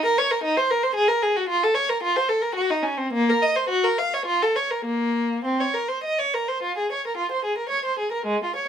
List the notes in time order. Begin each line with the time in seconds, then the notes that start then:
0.05 A#4
0.18 C#5
0.31 A#4
0.43 D#4
0.57 C5
0.71 A#4
0.83 C5
0.95 G#4
1.08 A#4
1.23 G#4
1.36 F#4
1.49 F4
1.63 A4
1.75 C#5
1.89 A#4
2.03 F4
2.16 C5
2.29 A4
2.42 A#4
2.55 F#4
2.70 D#4
2.83 C#4
2.98 C4
3.13 A#3
3.29 A#4
3.42 D#5
3.56 C5
3.69 F#4
3.84 A#4
3.99 F5
4.14 C#5
4.26 F4
4.42 A4
4.56 C#5
4.71 A#4
4.85 A#3
5.45 C4
5.61 C#5
5.74 A#4
5.89 C5
6.04 D#5
6.19 C#5
6.34 A#4
6.49 C5
6.63 F4
6.77 G#4
6.92 C#5
7.07 A#4
7.17 F4
7.31 C5
7.45 G#4
7.58 A#4
7.69 C#5
7.85 C5
7.99 G#4
8.12 A#4
8.26 G#3
8.44 F4
8.56 C#5